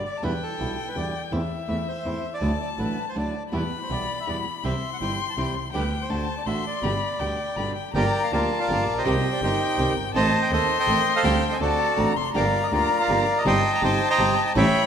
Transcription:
Already playing: violin D5
0.05 bandoneon D5
0.17 violin A5
0.22 double bass E2, nylon-string guitar B2 D3 G3 B3 E4, bandoneon B4, violin G5
0.43 bandoneon A4
0.59 double bass B1, nylon-string guitar B2 D3 G3 B3 E4
0.88 bandoneon B4
0.95 double bass E2, nylon-string guitar B2 D3 G3 B3 E4, bandoneon D5
1.31 double bass E2, nylon-string guitar E3 A3 C4 E4, violin E5
1.68 double bass E2, nylon-string guitar E3 A3 C4 E4, bandoneon E5
1.88 bandoneon C5
2.05 double bass E2, nylon-string guitar E3 A3 C4 E4
2.34 bandoneon D5
2.41 double bass D2, nylon-string guitar D3 F#3 A3 D4 E4, violin A5
2.61 bandoneon D5
2.78 double bass A1, nylon-string guitar D3 F#3 A3 D4 E4, bandoneon B4
3.09 bandoneon C5
3.15 double bass D2, nylon-string guitar D3 F#3 A3 D4 E4, bandoneon D5
3.52 double bass E2, nylon-string guitar B2 E3 G3 B3 E4, string section B3 E4 G4, bandoneon B4, violin B5
3.82 bandoneon C5
3.90 double bass B1, nylon-string guitar B2 E3 G3 B3 E4, string section B3 E4 G4, bandoneon D5
4.20 bandoneon E5
4.27 double bass E2, nylon-string guitar B2 E3 G3 B3 E4, string section B3 E4 G4, bandoneon D5
4.64 double bass C2, nylon-string guitar C3 E3 G3 C4 E4, string section C4 E4 G4, bandoneon E5, violin C6
4.93 bandoneon F#5
5.01 double bass G1, nylon-string guitar C3 E3 G3 C4 E4, string section C4 E4 G4, bandoneon G5
5.30 bandoneon A5
5.37 double bass C2, nylon-string guitar C3 E3 G3 C4 E4, string section C4 E4 G4, bandoneon G5
5.56 double bass C2
5.73 double bass D2, nylon-string guitar D3 G3 B3 G4, string section B3 D4 G4, bandoneon B4, violin G5
6.01 bandoneon C5
6.09 double bass D2, nylon-string guitar D3 A3 D4 F#4, string section A3 D4 F#4, violin A5
6.38 bandoneon D5
6.46 double bass A1, nylon-string guitar D3 A3 D4 F#4, string section A3 D4 F#4, bandoneon E5, violin C6
6.67 bandoneon D5
6.83 double bass G1, nylon-string guitar B2 D3 G3 B3 G4, string section B3 D4 G4, violin B5
7.19 double bass D2, nylon-string guitar B2 D3 G3 B3 G4, string section B3 D4 G4, violin G5
7.56 double bass G1, nylon-string guitar B2 D3 G3 B3 G4, string section B3 D4 G4, violin B5
7.75 violin G5
7.94 double bass G1, nylon-string guitar D3 F3 A#3 D4 G4, string section A#3 F4 G4, bandoneon A#4 D5 G5, violin A#5
8.23 bandoneon F5
8.32 double bass D2, nylon-string guitar D3 F3 A#3 D4 G4, string section A#3 F4 G4, bandoneon F4 A#4 D5, violin A5
8.60 bandoneon A#4 D5 F5
8.69 double bass G1, nylon-string guitar D3 F3 A#3 D4 G4, string section A#3 F4 G4
8.88 double bass A#1
8.98 bandoneon G4 C5 D#5
9.05 double bass C2, nylon-string guitar C3 D#3 G3 C4 G4, string section C4 D#4 G4, violin G5
9.32 bandoneon D5
9.42 double bass G1, nylon-string guitar C3 D#3 G3 C4 G4, string section C4 D#4 G4, bandoneon D#4 G4 C5
9.78 double bass C2, nylon-string guitar C3 D#3 G3 C4 G4, string section C4 D#4 G4
9.96 double bass G1
10.14 double bass A1, nylon-string guitar D#3 A3 C4, string section C4 D#4 A4, bandoneon C5 D#5 A5, violin A5
10.43 bandoneon G5
10.51 double bass D#2, nylon-string guitar D#3 A3 C4, string section C4 D#4 A4, bandoneon A4 C5 D#5, violin C6
10.80 bandoneon C5 D#5 G5
10.87 double bass A1, nylon-string guitar D#3 A3 C4, string section C4 D#4 A4
11.16 bandoneon A4 C5 F5
11.23 double bass D2, nylon-string guitar D3 G3 C4, string section C4 D4 G4, violin G5
11.52 bandoneon D#5, violin G#5
11.60 double bass D2, nylon-string guitar D3 A3 C4 F#4, string section C4 D4 F#4, bandoneon F#4 A4 D5, violin A5
11.97 double bass A1, nylon-string guitar D3 A3 C4 F#4, string section C4 D4 F#4, violin A#5
12.16 double bass F1, violin C6
12.34 double bass G1, nylon-string guitar D3 F3 A#3 D4 G4, string section A#3 F4 G4, bandoneon A#4 D5 F5, violin A#5
12.63 bandoneon D#5
12.71 double bass D2, nylon-string guitar D3 F3 A#3 D4 G4, string section A#3 F4 G4, bandoneon F4 A#4 D5
13.00 bandoneon A#4 D5 F5
13.08 double bass G1, nylon-string guitar D3 F3 A#3 D4 G4, string section A#3 F4 G4
13.38 bandoneon D#5
13.45 double bass G1, nylon-string guitar C3 G3 C4 D#4 G4, string section C4 D#4 G4, bandoneon D#5 G5 C6, violin A5
13.75 bandoneon A#5
13.82 double bass G1, nylon-string guitar C3 G3 C4 D#4 G4, string section C4 D#4 G4, bandoneon C5 D#5 G5
14.10 bandoneon D#5 G5 A#5
14.18 double bass G1, nylon-string guitar C3 G3 C4 D#4 G4, string section C4 D#4 G4
14.48 bandoneon A5
14.55 double bass A1, nylon-string guitar E3 G3 C#4 E4, string section A3 C#4 G4, bandoneon C#5 E5 G5, violin B5

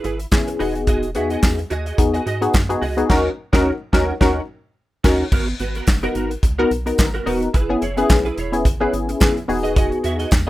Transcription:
0.04 analog synth bass G#1, clean electric guitar E4 G#4 B4, closed hi-hat
0.19 muted clean electric guitar stroke, closed hi-hat
0.31 analog polysynth B3 C#4 E4 G#4, muted clean electric guitar stroke, kick, snare, clap, tambourine
0.48 muted clean electric guitar stroke, closed hi-hat
0.59 analog synth bass E1, analog polysynth B3 D#4 F#4 G#4, clean electric guitar F#4 G#4 D#5, open hi-hat
0.75 muted clean electric guitar stroke, closed hi-hat
0.87 clean electric guitar F#4 G#4 D#5, kick, closed hi-hat
1.03 closed hi-hat
1.15 analog synth bass E2, analog polysynth B3 D#4 F#4 G#4, clean electric guitar F#4 G#4 E5, closed hi-hat
1.30 clean electric guitar F#4 G#4 D#5, closed hi-hat
1.43 analog synth bass E2, muted clean electric guitar stroke, kick, snare, clap, tambourine
1.58 muted clean electric guitar stroke, closed hi-hat
1.70 analog synth bass D#2, clean electric guitar F#4 G#4 D#5, closed hi-hat
1.86 clean electric guitar F#4 G#4 D#5, closed hi-hat
1.98 analog synth bass E2, analog polysynth B3 D#4 F#4 G#4, muted clean electric guitar stroke, kick, closed hi-hat
2.14 clean electric guitar F#4 G#4 D#5, closed hi-hat
2.26 analog synth bass G#2, clean electric guitar F#4 G#4 D#5, closed hi-hat
2.41 analog polysynth B3 D#4 F#4 G#4, muted clean electric guitar stroke, closed hi-hat
2.54 analog synth bass F#2, muted clean electric guitar stroke, kick, snare, clap, tambourine
2.69 analog polysynth B3 D#4 F#4 G#4, muted clean electric guitar stroke, closed hi-hat
2.82 analog synth bass C#2, clean electric guitar F#4 G#4 D#5, open hi-hat
2.97 analog polysynth B3 D#4 F#4 G#4, muted clean electric guitar stroke, closed hi-hat
3.09 analog synth bass D#2, analog polysynth C#4 D#4 F#4 A#4, clean electric guitar C#4 F#4 A#4, kick, snare, crash
3.53 analog synth bass D#2, analog polysynth C#4 D#4 F#4 A#4, clean electric guitar C#4 F#4 A#4, kick, snare
3.93 analog synth bass D#2, analog polysynth C#4 D#4 F#4 A#4, clean electric guitar C#4 F#4 A#4, kick, snare
4.21 analog synth bass D#2, analog polysynth C#4 D#4 F#4 A#4, clean electric guitar C#4 F#4 A#4, kick, snare
5.04 analog synth bass D#2, clean electric guitar C#4 F#4 A#4, analog polysynth C#4 D#4 F#4 A#4, kick, snare, crash
5.32 analog synth bass G#1, clean electric guitar B3 F#4 A#4, kick, crash
5.48 muted clean electric guitar stroke
5.59 analog synth bass G#1, clean electric guitar B3 F#4 B4, closed hi-hat
5.75 clean electric guitar B3 F#4 A#4, closed hi-hat
5.87 analog synth bass F#1, kick, snare, clap, tambourine
6.03 analog polysynth B3 D#4 F#4 A#4, clean electric guitar B3 F#4 A#4, closed hi-hat
6.15 analog synth bass G#1, clean electric guitar B3 F#4 A#4, closed hi-hat
6.31 muted clean electric guitar stroke, closed hi-hat
6.43 analog synth bass C#2, muted clean electric guitar stroke, kick, closed hi-hat
6.58 analog polysynth B3 D#4 F#4 A#4, clean electric guitar B3 F#4 A#4
6.71 analog synth bass B1, muted clean electric guitar stroke, closed hi-hat
6.86 analog polysynth B3 D#4 F#4 A#4, muted clean electric guitar stroke, closed hi-hat
6.98 analog synth bass G#1, muted clean electric guitar stroke, kick, snare, clap, tambourine
7.14 clean electric guitar B3 F#4 A#4, closed hi-hat
7.26 analog synth bass E1, analog polysynth B3 D#4 F#4 A#4, clean electric guitar B3 F#4 B4, open hi-hat
7.42 muted clean electric guitar stroke, closed hi-hat
7.54 analog synth bass F#1, clean electric guitar E4 G#4 B4, kick, closed hi-hat
7.69 analog polysynth B3 C#4 E4 G#4, muted clean electric guitar stroke
7.81 analog synth bass F#1, clean electric guitar E4 G#4 C#5, closed hi-hat
7.97 analog polysynth B3 C#4 E4 G#4, clean electric guitar E4 G#4 B4, closed hi-hat
8.09 analog synth bass B1, kick, snare, clap, tambourine
8.25 clean electric guitar E4 G#4 B4, closed hi-hat
8.37 analog synth bass E1, clean electric guitar E4 G#4 C#5, closed hi-hat
8.52 analog polysynth B3 C#4 E4 G#4, muted clean electric guitar stroke, closed hi-hat
8.65 analog synth bass G#1, muted clean electric guitar stroke, kick, closed hi-hat
8.80 analog polysynth B3 C#4 E4 G#4, clean electric guitar E4 G#4 B4
8.93 analog synth bass G#1, muted clean electric guitar stroke, closed hi-hat
9.09 muted clean electric guitar stroke, closed hi-hat
9.20 clean electric guitar E4 G#4 B4, kick, snare, clap, tambourine
9.36 muted clean electric guitar stroke, closed hi-hat
9.48 analog synth bass E1, analog polysynth B3 D#4 F#4 G#4, muted clean electric guitar stroke, open hi-hat
9.63 clean electric guitar F#4 G#4 D#5, closed hi-hat
9.76 clean electric guitar F#4 G#4 D#5, kick, closed hi-hat
9.92 muted clean electric guitar stroke, closed hi-hat
10.03 analog synth bass E2, clean electric guitar F#4 G#4 E5, closed hi-hat
10.19 clean electric guitar F#4 G#4 D#5, closed hi-hat
10.31 analog synth bass E2, kick, snare, clap, tambourine

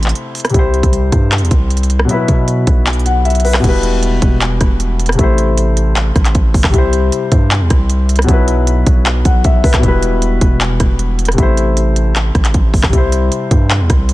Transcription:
Already playing: 808-style bass A1, grand piano C3 A3 E4 C5
0.03 clap, closed hi-hat
0.09 closed hi-hat
0.15 closed hi-hat
0.35 closed hi-hat, open hi-hat
0.40 closed hi-hat
0.45 cross-stick, closed hi-hat
0.50 grand piano C3 G3, closed hi-hat
0.54 808-style bass C2, grand piano E4, kick, closed hi-hat
0.59 grand piano C5
0.74 closed hi-hat
0.83 808-style bass C2, kick, closed hi-hat
0.93 closed hi-hat
1.12 808-style bass G2, kick, closed hi-hat
1.32 clap, closed hi-hat
1.38 808-style bass E2, closed hi-hat
1.45 closed hi-hat
1.51 808-style bass C2, kick, closed hi-hat
1.70 closed hi-hat
1.77 closed hi-hat
1.83 closed hi-hat
1.90 closed hi-hat
1.99 cross-stick
2.05 grand piano B2 F#3
2.09 grand piano E4, closed hi-hat
2.14 grand piano B4
2.28 808-style bass B2, kick, closed hi-hat
2.48 closed hi-hat
2.67 808-style bass B1, kick, closed hi-hat
2.87 clap, closed hi-hat
2.93 closed hi-hat
2.99 closed hi-hat
3.06 grand piano F#5, closed hi-hat
3.25 grand piano E5, closed hi-hat
3.30 closed hi-hat
3.35 closed hi-hat
3.40 closed hi-hat
3.45 grand piano B4, open hi-hat
3.54 cross-stick, clap
3.60 grand piano B2 G3
3.64 808-style bass E1, grand piano E4, kick, closed hi-hat, crash
3.69 grand piano B4
3.83 closed hi-hat
4.03 closed hi-hat
4.22 808-style bass E1, kick, closed hi-hat
4.41 clap, closed hi-hat
4.61 808-style bass E1, kick, cross-stick, closed hi-hat
4.80 closed hi-hat
5.00 closed hi-hat
5.06 cross-stick, closed hi-hat
5.12 grand piano C3, closed hi-hat
5.17 808-style bass A1, grand piano A3 E4, kick, closed hi-hat
5.23 grand piano C5
5.38 closed hi-hat
5.58 closed hi-hat
5.77 closed hi-hat
5.96 clap, closed hi-hat
6.16 808-style bass A1, kick, cross-stick, closed hi-hat
6.25 clap, closed hi-hat
6.35 808-style bass A1, kick, closed hi-hat
6.54 808-style bass G1, kick, open hi-hat
6.64 808-style bass A1, kick, cross-stick, clap
6.69 grand piano C3 G3
6.74 808-style bass C2, grand piano E4, kick, closed hi-hat
6.78 grand piano C5
6.93 closed hi-hat
7.12 closed hi-hat
7.32 808-style bass G2, kick, closed hi-hat
7.51 clap, closed hi-hat
7.61 808-style bass E2
7.70 808-style bass C2, kick, cross-stick, closed hi-hat
7.90 closed hi-hat
8.09 closed hi-hat
8.16 cross-stick, closed hi-hat
8.22 grand piano B2, closed hi-hat
8.27 808-style bass B1, grand piano F#3 E4, kick, closed hi-hat
8.33 grand piano B4
8.48 closed hi-hat
8.67 closed hi-hat
8.87 808-style bass B1, kick, closed hi-hat
9.06 clap, closed hi-hat
9.25 808-style bass B1, grand piano F#5, kick, closed hi-hat
9.44 808-style bass B1, grand piano E5, kick, closed hi-hat
9.64 808-style bass B1, grand piano B4, kick, closed hi-hat, open hi-hat
9.74 kick, cross-stick, clap, closed hi-hat
9.79 grand piano B2 G3
9.83 808-style bass E1, grand piano E4, kick, closed hi-hat
9.88 grand piano B4
10.03 closed hi-hat
10.22 closed hi-hat
10.41 808-style bass E1, kick, closed hi-hat
10.61 clap, closed hi-hat
10.80 808-style bass E1, kick, cross-stick, closed hi-hat
10.99 closed hi-hat
11.19 closed hi-hat
11.25 cross-stick, closed hi-hat
11.32 grand piano C3, closed hi-hat
11.37 808-style bass A1, grand piano A3 E4, kick, closed hi-hat
11.43 grand piano C5
11.57 closed hi-hat
11.77 closed hi-hat
11.96 closed hi-hat
12.16 clap, closed hi-hat
12.35 808-style bass A1, kick, cross-stick, closed hi-hat
12.45 clap, closed hi-hat
12.54 808-style bass A1, kick, closed hi-hat
12.74 808-style bass G1, kick, open hi-hat
12.83 808-style bass A1, kick, cross-stick, clap
12.89 grand piano C3 G3
12.93 808-style bass C2, grand piano E4, kick, closed hi-hat
12.97 grand piano C5
13.12 closed hi-hat
13.32 closed hi-hat
13.51 808-style bass G2, kick, closed hi-hat
13.70 clap, closed hi-hat
13.80 808-style bass E2
13.90 808-style bass C2, kick, cross-stick, closed hi-hat
14.09 closed hi-hat

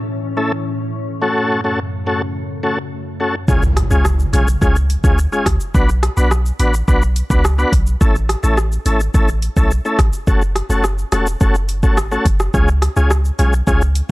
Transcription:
Already playing: ambient pad A2 E3 C#4
0.37 tonewheel organ A3 C#4 E4 A4
1.22 ambient pad F#2 C#3 A3, tonewheel organ A3 C#4 F#4 A4
1.64 tonewheel organ A3 C#4 F#4 A4
2.06 tonewheel organ A3 C#4 F#4 A4
2.63 tonewheel organ A3 C#4 F#4 A4
3.20 tonewheel organ A3 C#4 F#4 A4
3.48 808-style bass C#2, tonewheel organ G#3 C#4 F4 G#4, kick, impact, shaker
3.63 shaker
3.77 cross-stick, closed hi-hat, shaker
3.91 808-style bass C#2, tonewheel organ G#3 C#4 F4 G#4, shaker
4.05 cross-stick, shaker
4.20 shaker
4.33 808-style bass B1, tonewheel organ G#3 C#4 F4 G#4, closed hi-hat, shaker
4.48 shaker
4.61 808-style bass C#2, tonewheel organ G#3 C#4 F4 G#4, kick, shaker
4.76 shaker
4.90 closed hi-hat, shaker
5.04 808-style bass D2, tonewheel organ G#3 C#4 F4 G#4, kick, shaker
5.18 shaker
5.32 tonewheel organ G#3 C#4 F4 G#4, shaker
5.46 808-style bass C#2, kick, cross-stick, closed hi-hat, shaker
5.60 shaker
5.74 808-style bass B1, tonewheel organ B3 D4 F#4 B4, kick, shaker
5.89 shaker
6.03 cross-stick, closed hi-hat, shaker
6.17 808-style bass B1, tonewheel organ B3 D4 F#4 B4, shaker
6.31 cross-stick, shaker
6.46 shaker
6.59 808-style bass A1, tonewheel organ B3 D4 F#4 B4, closed hi-hat, shaker
6.74 shaker
6.88 808-style bass B1, tonewheel organ B3 D4 F#4 B4, kick, shaker
7.02 shaker
7.16 closed hi-hat, shaker
7.30 808-style bass C#2, tonewheel organ B3 D4 F#4 B4, kick, shaker
7.45 cross-stick, shaker
7.58 tonewheel organ B3 D4 F#4 B4, shaker
7.73 808-style bass B1, kick, closed hi-hat, shaker
7.87 shaker
8.01 808-style bass A1, tonewheel organ A3 C#4 E4 A4, kick, shaker
8.15 shaker
8.29 cross-stick, closed hi-hat, shaker
8.43 808-style bass A1, tonewheel organ A3 C#4 E4 A4, shaker
8.57 cross-stick, shaker
8.72 shaker
8.86 808-style bass G#1, tonewheel organ A3 C#4 E4 A4, closed hi-hat, shaker
9.00 shaker
9.14 808-style bass A1, tonewheel organ A3 C#4 E4 A4, kick, shaker
9.28 shaker
9.42 closed hi-hat, shaker
9.57 808-style bass B1, tonewheel organ A3 C#4 E4 A4, kick, shaker
9.71 shaker
9.85 tonewheel organ A3 C#4 E4 A4, shaker
9.99 808-style bass A1, kick, cross-stick, closed hi-hat, shaker
10.13 shaker
10.27 808-style bass F#1, tonewheel organ A3 C#4 F#4 A4, kick, shaker
10.42 shaker
10.56 cross-stick, closed hi-hat, shaker
10.70 808-style bass F#1, tonewheel organ A3 C#4 F#4 A4, shaker
10.84 cross-stick, shaker
10.98 shaker
11.12 808-style bass E1, tonewheel organ A3 C#4 F#4 A4, cross-stick, closed hi-hat, shaker
11.26 shaker
11.41 808-style bass F#1, tonewheel organ A3 C#4 F#4 A4, kick, shaker
11.55 shaker
11.69 closed hi-hat, shaker
11.83 808-style bass G#1, tonewheel organ A3 C#4 F#4 A4, kick, shaker
11.97 cross-stick, shaker
12.11 tonewheel organ A3 C#4 F#4 A4, shaker
12.25 808-style bass F#1, kick, closed hi-hat, shaker
12.39 cross-stick, shaker
12.54 808-style bass C#2, tonewheel organ G#3 C#4 F4 G#4, kick, shaker
12.68 shaker
12.82 cross-stick, closed hi-hat, shaker
12.96 808-style bass C#2, tonewheel organ G#3 C#4 F4 G#4, shaker
13.11 cross-stick, shaker
13.25 shaker
13.39 808-style bass B1, tonewheel organ G#3 C#4 F4 G#4, closed hi-hat, shaker
13.53 shaker
13.67 808-style bass C#2, tonewheel organ G#3 C#4 F4 G#4, kick, shaker
13.81 shaker
13.95 closed hi-hat, shaker

